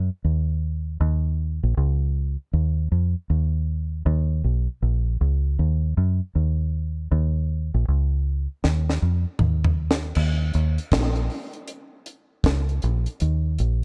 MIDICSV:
0, 0, Header, 1, 3, 480
1, 0, Start_track
1, 0, Key_signature, -6, "minor"
1, 0, Tempo, 763359
1, 626, Time_signature, 4, 2, 24, 8
1, 8705, End_track
2, 0, Start_track
2, 0, Title_t, "Fingered electric bass"
2, 0, Program_c, 0, 33
2, 154, Note_on_c, 0, 39, 82
2, 604, Note_off_c, 0, 39, 0
2, 633, Note_on_c, 0, 39, 99
2, 999, Note_off_c, 0, 39, 0
2, 1027, Note_on_c, 0, 34, 81
2, 1105, Note_off_c, 0, 34, 0
2, 1115, Note_on_c, 0, 37, 83
2, 1480, Note_off_c, 0, 37, 0
2, 1593, Note_on_c, 0, 39, 90
2, 1815, Note_off_c, 0, 39, 0
2, 1834, Note_on_c, 0, 41, 78
2, 1974, Note_off_c, 0, 41, 0
2, 2074, Note_on_c, 0, 39, 87
2, 2524, Note_off_c, 0, 39, 0
2, 2553, Note_on_c, 0, 39, 105
2, 2775, Note_off_c, 0, 39, 0
2, 2794, Note_on_c, 0, 35, 80
2, 2934, Note_off_c, 0, 35, 0
2, 3033, Note_on_c, 0, 34, 82
2, 3255, Note_off_c, 0, 34, 0
2, 3275, Note_on_c, 0, 37, 80
2, 3496, Note_off_c, 0, 37, 0
2, 3515, Note_on_c, 0, 39, 92
2, 3736, Note_off_c, 0, 39, 0
2, 3756, Note_on_c, 0, 42, 84
2, 3895, Note_off_c, 0, 42, 0
2, 3995, Note_on_c, 0, 39, 80
2, 4445, Note_off_c, 0, 39, 0
2, 4475, Note_on_c, 0, 39, 98
2, 4840, Note_off_c, 0, 39, 0
2, 4869, Note_on_c, 0, 34, 79
2, 4945, Note_off_c, 0, 34, 0
2, 4957, Note_on_c, 0, 37, 86
2, 5321, Note_off_c, 0, 37, 0
2, 5435, Note_on_c, 0, 39, 89
2, 5656, Note_off_c, 0, 39, 0
2, 5674, Note_on_c, 0, 41, 78
2, 5813, Note_off_c, 0, 41, 0
2, 5913, Note_on_c, 0, 39, 84
2, 6363, Note_off_c, 0, 39, 0
2, 6392, Note_on_c, 0, 39, 98
2, 6614, Note_off_c, 0, 39, 0
2, 6632, Note_on_c, 0, 39, 88
2, 6772, Note_off_c, 0, 39, 0
2, 6871, Note_on_c, 0, 34, 100
2, 7093, Note_off_c, 0, 34, 0
2, 7827, Note_on_c, 0, 37, 90
2, 8050, Note_off_c, 0, 37, 0
2, 8072, Note_on_c, 0, 34, 84
2, 8211, Note_off_c, 0, 34, 0
2, 8310, Note_on_c, 0, 39, 100
2, 8532, Note_off_c, 0, 39, 0
2, 8550, Note_on_c, 0, 34, 88
2, 8705, Note_off_c, 0, 34, 0
2, 8705, End_track
3, 0, Start_track
3, 0, Title_t, "Drums"
3, 5432, Note_on_c, 9, 38, 59
3, 5495, Note_off_c, 9, 38, 0
3, 5593, Note_on_c, 9, 38, 52
3, 5656, Note_off_c, 9, 38, 0
3, 5905, Note_on_c, 9, 45, 76
3, 5968, Note_off_c, 9, 45, 0
3, 6065, Note_on_c, 9, 43, 84
3, 6128, Note_off_c, 9, 43, 0
3, 6229, Note_on_c, 9, 38, 91
3, 6292, Note_off_c, 9, 38, 0
3, 6383, Note_on_c, 9, 49, 91
3, 6446, Note_off_c, 9, 49, 0
3, 6625, Note_on_c, 9, 42, 69
3, 6688, Note_off_c, 9, 42, 0
3, 6780, Note_on_c, 9, 42, 61
3, 6843, Note_off_c, 9, 42, 0
3, 6864, Note_on_c, 9, 42, 92
3, 6866, Note_on_c, 9, 36, 108
3, 6873, Note_on_c, 9, 38, 120
3, 6927, Note_off_c, 9, 42, 0
3, 6929, Note_off_c, 9, 36, 0
3, 6936, Note_off_c, 9, 38, 0
3, 7015, Note_on_c, 9, 42, 48
3, 7078, Note_off_c, 9, 42, 0
3, 7105, Note_on_c, 9, 46, 47
3, 7168, Note_off_c, 9, 46, 0
3, 7253, Note_on_c, 9, 42, 51
3, 7315, Note_off_c, 9, 42, 0
3, 7342, Note_on_c, 9, 42, 105
3, 7404, Note_off_c, 9, 42, 0
3, 7583, Note_on_c, 9, 42, 86
3, 7646, Note_off_c, 9, 42, 0
3, 7822, Note_on_c, 9, 36, 116
3, 7824, Note_on_c, 9, 42, 97
3, 7835, Note_on_c, 9, 38, 126
3, 7885, Note_off_c, 9, 36, 0
3, 7887, Note_off_c, 9, 42, 0
3, 7898, Note_off_c, 9, 38, 0
3, 7979, Note_on_c, 9, 42, 45
3, 8042, Note_off_c, 9, 42, 0
3, 8061, Note_on_c, 9, 42, 72
3, 8124, Note_off_c, 9, 42, 0
3, 8213, Note_on_c, 9, 42, 53
3, 8276, Note_off_c, 9, 42, 0
3, 8301, Note_on_c, 9, 42, 91
3, 8364, Note_off_c, 9, 42, 0
3, 8542, Note_on_c, 9, 42, 75
3, 8605, Note_off_c, 9, 42, 0
3, 8705, End_track
0, 0, End_of_file